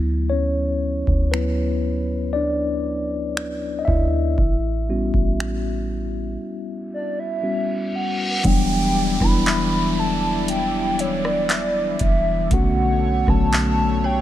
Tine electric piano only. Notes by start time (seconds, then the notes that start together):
Already playing: F#3 B3 E4
0.30 C#4 C#5
1.31 F#3 B3 E4 B4
2.33 D4 D5
3.79 D#5
3.85 E4 E5
4.89 G3 B3 C#4 F#4
7.43 G3 B3 C#4 F#4
8.43 E3 F#3 G3 B3 D4
9.20 E3 G3 B3 D4 E4
12.51 D3 A3 B3 C#4 F#4
13.27 D3 F#3 A3 B3 C#4